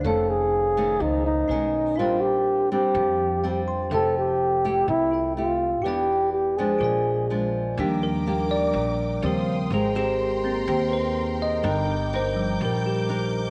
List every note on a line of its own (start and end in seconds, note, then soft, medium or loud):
0.01 0.97 F1 loud
0.01 0.73 D#3 soft
0.01 1.46 A3 soft
0.01 1.45 D#4 soft
0.05 0.99 F2 soft
0.05 0.74 A3 soft
0.05 0.74 C#4 medium
0.05 0.31 A4 medium
0.05 1.47 C#5 soft
0.05 1.48 F5 soft
0.29 1.03 G#4 medium
0.77 1.46 D#3 medium
0.77 1.46 A3 medium
0.77 1.47 C#4 medium
1.00 1.46 C#2 medium
1.00 1.48 F2 soft
1.00 1.25 D#4 medium
1.26 1.99 D#4 medium
1.48 1.97 B1 medium
1.48 1.95 D#3 soft
1.48 1.95 G#3 soft
1.48 1.95 C#4 medium
1.48 1.97 D#4 soft
1.48 1.98 B4 soft
1.48 1.98 C#5 soft
1.48 1.99 G#5 soft
1.96 2.91 A#1 medium
1.96 2.93 A#2 soft
1.96 2.67 G3 soft
1.96 2.68 C4 soft
1.96 3.87 D4 soft
1.96 2.22 F4 medium
1.96 3.88 A#4 soft
1.96 3.89 C5 soft
2.00 2.68 D4 medium
2.00 3.43 G5 soft
2.21 2.70 G4 medium
2.72 3.40 G3 medium
2.72 3.40 C4 medium
2.72 3.40 D4 medium
2.72 3.64 G4 medium
2.95 3.92 F2 loud
2.95 3.90 F3 soft
3.44 3.88 G3 soft
3.44 3.89 C4 medium
3.44 3.89 D4 medium
3.44 3.66 G5 soft
3.68 3.90 C6 soft
3.90 4.84 F1 medium
3.90 4.86 F3 medium
3.90 4.61 A3 soft
3.90 4.61 E4 soft
3.90 4.61 G4 medium
3.90 5.09 A4 soft
3.90 4.15 A4 loud
3.90 5.10 E5 soft
3.94 5.12 G5 soft
4.18 4.85 G4 medium
4.65 5.33 A3 medium
4.65 5.33 E4 medium
4.65 5.34 G4 medium
4.88 5.83 C2 medium
4.88 5.83 C3 soft
4.88 5.34 E4 medium
5.11 5.84 F4 soft
5.11 5.85 A4 soft
5.11 5.86 E5 soft
5.11 5.86 G5 soft
5.36 5.68 A3 soft
5.36 5.85 F4 medium
5.36 5.69 G4 medium
5.82 6.77 E1 medium
5.82 6.58 E3 soft
5.82 6.33 B3 soft
5.82 6.34 D4 medium
5.82 6.78 E4 soft
5.82 6.32 G4 medium
5.82 6.80 B4 soft
5.86 6.34 G4 medium
5.86 6.80 D5 soft
5.86 6.81 G5 medium
6.33 6.59 G4 medium
6.57 7.27 F3 medium
6.57 7.27 G#3 medium
6.57 7.27 D4 medium
6.57 7.30 G#4 medium
6.79 7.74 A#1 medium
6.79 7.75 F4 soft
6.79 7.76 A#4 soft
6.83 7.77 A#2 soft
6.83 7.77 D5 soft
6.83 7.78 G#5 medium
7.30 7.75 F3 soft
7.30 7.75 G#3 soft
7.30 7.75 D4 soft
7.78 8.71 D#2 loud
7.78 8.73 D#3 medium
7.78 9.19 F3 soft
7.78 9.19 G3 soft
7.78 8.23 A#3 medium
7.78 8.23 D4 medium
7.78 9.20 D4 soft
7.78 8.23 G4 medium
7.78 9.22 A#4 medium
7.78 13.50 G5 medium
7.78 9.22 D6 medium
8.03 8.48 A#4 medium
8.27 9.19 A#3 medium
8.27 9.19 D4 soft
8.27 9.20 G4 medium
8.51 9.19 D5 medium
8.73 9.19 A#1 medium
8.73 9.21 A#2 medium
9.22 9.68 D#2 loud
9.22 9.55 C#3 soft
9.22 9.55 F3 soft
9.22 9.55 G3 soft
9.22 9.56 C4 soft
9.22 9.56 C#4 medium
9.22 9.55 G4 medium
9.22 9.70 A#4 medium
9.22 9.56 C5 medium
9.22 9.71 F5 medium
9.22 9.71 C6 medium
9.22 9.71 D#6 medium
9.70 10.63 G#1 medium
9.70 10.66 G#3 medium
9.70 9.92 C4 soft
9.70 9.92 G4 medium
9.70 9.96 G#4 medium
9.70 13.50 A#4 medium
9.70 9.92 A#4 medium
9.70 11.63 A#5 medium
9.70 11.63 C6 medium
9.95 10.64 C4 medium
9.95 10.64 G4 medium
9.95 10.64 A#4 medium
10.44 10.76 A#3 soft
10.44 10.76 C4 soft
10.67 11.60 D#2 medium
10.67 11.62 D#3 soft
10.67 11.60 C4 soft
10.67 11.60 G4 soft
10.67 11.60 A#4 medium
10.88 10.91 B4 soft
10.93 11.37 C5 medium
11.42 12.09 D#5 medium
11.63 12.56 G1 loud
11.63 12.58 G3 medium
11.63 11.95 D4 medium
11.63 11.95 D#4 soft
11.63 11.95 A#4 medium
11.63 13.50 D6 medium
11.63 13.50 G6 medium
12.13 12.77 D4 medium
12.13 12.77 D#4 medium
12.13 12.78 A#4 medium
12.13 12.59 C5 medium
12.36 13.05 F3 soft
12.36 13.05 G3 soft
12.61 13.50 A#1 medium
12.61 13.50 G3 soft
12.65 12.86 A#4 medium
12.86 13.50 G4 soft
13.09 13.41 D4 medium
13.09 13.41 D#4 medium
13.09 13.42 A#4 medium